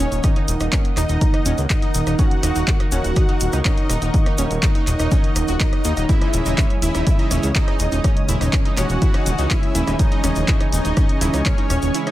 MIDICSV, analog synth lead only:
0, 0, Header, 1, 2, 480
1, 0, Start_track
1, 0, Tempo, 487805
1, 234, Time_signature, 4, 2, 24, 8
1, 11917, End_track
2, 0, Start_track
2, 0, Title_t, "Analog synth lead"
2, 0, Program_c, 0, 81
2, 0, Note_on_c, 0, 61, 103
2, 381, Note_off_c, 0, 61, 0
2, 956, Note_on_c, 0, 63, 101
2, 1581, Note_off_c, 0, 63, 0
2, 1674, Note_on_c, 0, 63, 91
2, 2116, Note_off_c, 0, 63, 0
2, 2153, Note_on_c, 0, 66, 105
2, 2779, Note_off_c, 0, 66, 0
2, 2873, Note_on_c, 0, 66, 105
2, 3499, Note_off_c, 0, 66, 0
2, 3593, Note_on_c, 0, 63, 102
2, 4219, Note_off_c, 0, 63, 0
2, 4793, Note_on_c, 0, 63, 101
2, 5419, Note_off_c, 0, 63, 0
2, 5514, Note_on_c, 0, 63, 94
2, 5956, Note_off_c, 0, 63, 0
2, 5993, Note_on_c, 0, 64, 104
2, 6619, Note_off_c, 0, 64, 0
2, 6714, Note_on_c, 0, 64, 99
2, 7340, Note_off_c, 0, 64, 0
2, 7433, Note_on_c, 0, 63, 103
2, 8059, Note_off_c, 0, 63, 0
2, 8634, Note_on_c, 0, 66, 103
2, 9355, Note_on_c, 0, 64, 92
2, 9370, Note_off_c, 0, 66, 0
2, 9797, Note_off_c, 0, 64, 0
2, 9835, Note_on_c, 0, 63, 106
2, 10460, Note_off_c, 0, 63, 0
2, 10556, Note_on_c, 0, 63, 100
2, 11181, Note_off_c, 0, 63, 0
2, 11275, Note_on_c, 0, 61, 102
2, 11900, Note_off_c, 0, 61, 0
2, 11917, End_track
0, 0, End_of_file